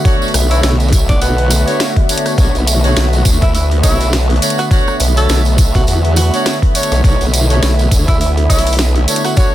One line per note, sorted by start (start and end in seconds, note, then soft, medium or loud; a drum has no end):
0.00 9.55 D3 medium
0.00 9.55 A3 medium
0.00 9.55 B3 medium
0.00 7.04 F#4 loud
0.00 9.55 E5 medium
0.04 0.30 D4 loud
0.04 0.15 F#4 medium
0.04 0.30 F#4 medium
0.04 0.30 A4 medium
0.04 0.30 C#5 loud
0.04 kick loud
0.04 open hi-hat soft
0.04 tambourine soft
0.22 tambourine soft
0.28 open hi-hat soft
0.34 0.61 B1 loud
0.34 cross-stick medium
0.34 open hi-hat medium
0.34 tambourine loud
0.51 0.74 D4 medium
0.51 0.59 E4 medium
0.51 0.74 F#4 medium
0.51 0.74 A4 medium
0.51 0.74 C#5 medium
0.51 open hi-hat soft
0.51 tambourine soft
0.62 1.19 B1 medium
0.62 0.74 E4 medium
0.62 snare loud
0.62 open hi-hat soft
0.62 tambourine medium
0.80 open hi-hat soft
0.80 tambourine soft
0.88 kick loud
0.88 open hi-hat soft
0.93 open hi-hat medium
0.93 tambourine medium
1.09 1.19 D4 medium
1.09 kick loud
1.09 open hi-hat soft
1.09 tambourine soft
1.21 1.65 B1 loud
1.21 2.04 B3 medium
1.21 open hi-hat soft
1.21 tambourine medium
1.38 open hi-hat soft
1.50 cross-stick soft
1.50 open hi-hat medium
1.50 tambourine loud
1.67 1.91 D4 medium
1.67 1.91 F#4 medium
1.67 1.91 A4 medium
1.67 1.91 C#5 loud
1.67 open hi-hat soft
1.67 tambourine soft
1.80 snare loud
1.80 open hi-hat soft
1.80 tambourine medium
1.96 kick medium
1.96 open hi-hat soft
2.09 2.34 D4 medium
2.09 2.34 F#4 medium
2.09 2.34 A4 medium
2.09 2.34 C#5 medium
2.09 open hi-hat medium
2.09 tambourine medium
2.18 closed hi-hat medium
2.26 cross-stick soft
2.26 open hi-hat soft
2.26 tambourine soft
2.38 2.52 B1 loud
2.38 2.55 D4 medium
2.38 2.55 F#4 medium
2.38 2.55 A4 medium
2.38 2.55 C#5 loud
2.38 kick loud
2.38 open hi-hat soft
2.38 tambourine medium
2.55 2.94 B1 loud
2.55 open hi-hat soft
2.55 tambourine soft
2.67 open hi-hat medium
2.67 tambourine loud
2.84 3.07 D4 medium
2.84 3.07 F#4 medium
2.84 3.07 A4 medium
2.84 3.07 C#5 loud
2.84 open hi-hat soft
2.84 tambourine soft
2.96 3.24 B1 loud
2.96 snare loud
2.96 open hi-hat soft
2.96 tambourine soft
3.13 open hi-hat soft
3.13 tambourine soft
3.25 3.82 D2 loud
3.25 kick loud
3.25 open hi-hat medium
3.25 tambourine loud
3.42 3.50 E4 medium
3.42 kick loud
3.42 open hi-hat soft
3.42 tambourine soft
3.55 3.65 E4 medium
3.55 open hi-hat soft
3.55 tambourine medium
3.71 open hi-hat soft
3.83 4.40 B1 loud
3.83 4.01 D4 medium
3.83 4.10 E4 loud
3.83 4.01 F#4 medium
3.83 4.01 A4 medium
3.83 4.01 C#5 loud
3.83 kick medium
3.83 open hi-hat medium
3.83 tambourine loud
4.01 open hi-hat soft
4.01 tambourine soft
4.13 snare loud
4.13 open hi-hat soft
4.13 tambourine medium
4.30 open hi-hat soft
4.36 open hi-hat soft
4.42 4.59 D4 medium
4.42 4.59 F#4 medium
4.42 4.59 A4 medium
4.42 4.59 C#5 medium
4.42 open hi-hat medium
4.42 tambourine loud
4.50 closed hi-hat medium
4.50 open hi-hat soft
4.58 4.67 F#4 medium
4.58 cross-stick soft
4.58 open hi-hat soft
4.58 tambourine soft
4.71 4.96 D4 loud
4.71 4.82 F#4 medium
4.71 4.96 F#4 medium
4.71 4.96 A4 medium
4.71 4.96 C#5 loud
4.71 kick loud
4.71 open hi-hat soft
4.71 tambourine medium
4.87 cross-stick medium
4.87 tambourine soft
5.00 5.27 B1 loud
5.00 open hi-hat medium
5.00 tambourine loud
5.17 5.40 D4 medium
5.17 5.40 F#4 medium
5.17 5.40 A4 medium
5.17 5.42 A4 loud
5.17 5.40 C#5 medium
5.17 open hi-hat soft
5.17 tambourine soft
5.29 5.86 B1 loud
5.29 snare loud
5.29 open hi-hat soft
5.29 tambourine medium
5.45 open hi-hat soft
5.45 tambourine soft
5.58 kick loud
5.58 open hi-hat medium
5.58 tambourine loud
5.74 5.83 F#4 medium
5.74 kick loud
5.74 open hi-hat soft
5.74 tambourine soft
5.87 6.31 E2 loud
5.87 5.98 F#4 medium
5.87 open hi-hat soft
5.87 tambourine medium
6.05 open hi-hat soft
6.16 6.63 F#4 loud
6.16 cross-stick soft
6.16 open hi-hat medium
6.16 tambourine loud
6.33 6.57 D4 medium
6.33 6.57 F#4 medium
6.33 6.57 A4 medium
6.33 6.57 C#5 loud
6.33 open hi-hat soft
6.33 tambourine soft
6.46 snare loud
6.46 open hi-hat soft
6.46 tambourine medium
6.62 kick medium
6.62 open hi-hat soft
6.75 7.00 D4 medium
6.75 7.00 F#4 medium
6.75 7.00 A4 medium
6.75 7.00 C#5 medium
6.75 open hi-hat medium
6.75 tambourine medium
6.83 closed hi-hat medium
6.92 7.02 B1 loud
6.92 cross-stick soft
6.92 open hi-hat soft
6.92 tambourine soft
7.04 7.18 B1 loud
7.04 7.21 D4 medium
7.04 9.55 E4 medium
7.04 7.21 F#4 medium
7.04 7.21 A4 medium
7.04 7.21 C#5 loud
7.04 kick loud
7.04 open hi-hat soft
7.04 tambourine soft
7.21 7.60 B1 medium
7.21 open hi-hat soft
7.21 tambourine soft
7.34 open hi-hat medium
7.34 tambourine medium
7.50 7.73 D4 medium
7.50 7.73 F#4 medium
7.50 7.73 A4 medium
7.50 7.73 C#5 medium
7.50 open hi-hat soft
7.50 tambourine soft
7.62 7.90 B1 loud
7.62 snare loud
7.62 open hi-hat soft
7.62 tambourine medium
7.79 open hi-hat soft
7.79 tambourine soft
7.91 8.48 D2 loud
7.91 kick loud
7.91 open hi-hat medium
7.91 tambourine loud
8.08 8.16 E4 medium
8.08 kick loud
8.08 open hi-hat soft
8.08 tambourine soft
8.20 8.31 E4 medium
8.20 open hi-hat soft
8.20 tambourine soft
8.38 open hi-hat soft
8.50 9.06 B1 medium
8.50 8.67 D4 medium
8.50 8.76 E4 loud
8.50 8.67 F#4 medium
8.50 8.67 A4 medium
8.50 8.67 C#5 loud
8.50 kick medium
8.50 open hi-hat medium
8.50 tambourine loud
8.59 open hi-hat medium
8.67 open hi-hat medium
8.67 tambourine soft
8.73 open hi-hat soft
8.79 snare loud
8.79 open hi-hat soft
8.79 tambourine medium
8.96 open hi-hat soft
9.08 9.25 D4 medium
9.08 9.25 F#4 medium
9.08 9.25 A4 medium
9.08 9.25 C#5 medium
9.08 open hi-hat medium
9.08 tambourine medium
9.16 closed hi-hat medium
9.25 9.33 F#4 medium
9.25 cross-stick soft
9.25 open hi-hat soft
9.25 tambourine soft
9.37 9.55 D4 loud
9.37 9.55 F#4 medium
9.37 9.48 F#4 medium
9.37 9.55 A4 medium
9.37 9.55 C#5 loud
9.37 kick loud
9.37 open hi-hat soft
9.37 tambourine medium